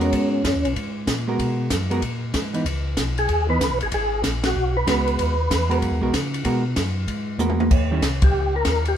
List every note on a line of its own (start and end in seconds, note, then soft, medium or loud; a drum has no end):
0.00 0.11 E2 medium
0.00 0.41 G#3 medium
0.00 0.41 B3 medium
0.00 0.74 C#4 medium
0.00 0.41 F#4 medium
0.00 0.41 A#4 medium
0.00 ride soft
0.13 0.43 G#2 medium
0.13 kick soft
0.13 ride medium
0.44 0.54 F#2 medium
0.44 kick soft
0.44 snare medium
0.44 hi-hat pedal medium
0.44 ride medium
0.54 0.65 D#2 soft
0.65 0.75 B1 medium
0.65 ride soft
0.76 1.06 G#2 medium
0.76 kick soft
0.76 ride medium
1.07 1.38 A#2 medium
1.07 kick soft
1.07 snare medium
1.07 hi-hat pedal medium
1.07 ride medium
1.27 1.68 G#3 medium
1.27 1.68 B3 medium
1.27 1.69 F#4 medium
1.27 1.69 A#4 medium
1.39 1.70 B2 medium
1.39 kick soft
1.39 ride medium
1.70 2.01 F#2 medium
1.70 kick soft
1.70 snare medium
1.70 hi-hat pedal medium
1.70 ride medium
1.90 2.01 G#3 medium
1.90 2.01 B3 medium
1.90 2.01 F#4 medium
1.90 2.01 A#4 medium
1.90 ride soft
2.02 2.33 A#2 medium
2.02 kick soft
2.02 ride soft
2.34 2.64 G#2 medium
2.34 kick soft
2.34 snare medium
2.34 hi-hat pedal medium
2.34 ride medium
2.54 2.64 E3 medium
2.54 2.64 B3 medium
2.54 2.64 D#4 medium
2.54 ride soft
2.66 2.96 C#2 medium
2.66 kick soft
2.66 ride medium
2.97 3.28 B1 medium
2.97 kick soft
2.97 snare medium
2.97 hi-hat pedal medium
2.97 ride medium
3.18 3.47 G#4 loud
3.18 ride soft
3.29 3.59 D#2 medium
3.29 kick soft
3.29 ride medium
3.48 3.59 E3 medium
3.48 3.59 B3 medium
3.48 3.59 D#4 medium
3.48 3.79 B4 medium
3.61 3.71 C#2 medium
3.61 kick soft
3.61 snare medium
3.61 hi-hat pedal medium
3.61 ride medium
3.71 3.81 B1 medium
3.81 3.91 G#1 medium
3.81 3.87 G#4 medium
3.81 ride soft
3.92 4.23 G#1 medium
3.92 4.22 G#4 medium
3.92 kick soft
3.92 ride medium
4.24 4.54 A#1 medium
4.24 kick soft
4.24 snare medium
4.24 hi-hat pedal medium
4.24 ride medium
4.44 4.77 F#4 medium
4.44 snare medium
4.44 ride medium
4.55 4.86 B1 medium
4.77 4.88 B4 medium
4.87 5.17 C#2 medium
4.87 5.34 G#3 medium
4.87 5.34 B3 medium
4.87 5.35 F#4 soft
4.87 5.78 B4 medium
4.87 kick soft
4.87 snare medium
4.87 hi-hat pedal medium
4.87 ride medium
5.07 ride soft
5.19 5.49 D#2 medium
5.19 kick soft
5.19 ride medium
5.50 5.80 E2 medium
5.50 kick soft
5.50 snare medium
5.50 hi-hat pedal medium
5.50 ride medium
5.69 5.99 G#3 medium
5.69 5.99 B3 medium
5.69 5.99 F#4 medium
5.69 6.00 A#4 medium
5.69 ride soft
5.82 5.91 F#2 medium
5.82 kick soft
5.82 ride soft
5.90 6.01 D#2 medium
6.01 6.11 B1 medium
6.01 6.12 G#3 medium
6.01 6.12 B3 medium
6.01 6.12 F#4 medium
6.01 6.12 A#4 medium
6.13 6.44 C#3 medium
6.13 kick soft
6.13 snare medium
6.13 hi-hat pedal medium
6.13 ride medium
6.34 ride soft
6.45 6.75 B2 medium
6.45 6.63 G#3 medium
6.45 6.63 B3 medium
6.45 6.63 F#4 medium
6.45 6.63 A#4 medium
6.45 kick soft
6.45 ride medium
6.76 7.07 F#2 medium
6.76 kick soft
6.76 snare medium
6.76 hi-hat pedal medium
6.76 ride medium
7.08 7.38 G#2 medium
7.08 kick soft
7.08 ride medium
7.38 7.69 E2 medium
7.38 7.70 G#3 soft
7.38 7.71 B3 medium
7.38 7.71 F#4 soft
7.38 7.71 A#4 medium
7.38 hi-hat pedal medium
7.38 high tom soft
7.50 high tom medium
7.60 high tom medium
7.71 8.01 D#2 medium
7.71 kick medium
7.71 crash medium
7.91 8.01 D#3 medium
7.91 8.01 G3 medium
7.91 8.01 C#4 medium
7.91 8.02 E4 medium
8.02 8.33 C2 medium
8.02 kick soft
8.02 snare medium
8.02 hi-hat pedal medium
8.02 ride medium
8.22 8.55 G4 loud
8.22 kick medium
8.22 ride medium
8.33 8.64 C#2 medium
8.56 8.84 A#4 medium
8.65 8.96 D#2 medium
8.65 kick soft
8.65 snare medium
8.65 hi-hat pedal medium
8.65 ride medium
8.85 8.97 G4 medium
8.85 ride soft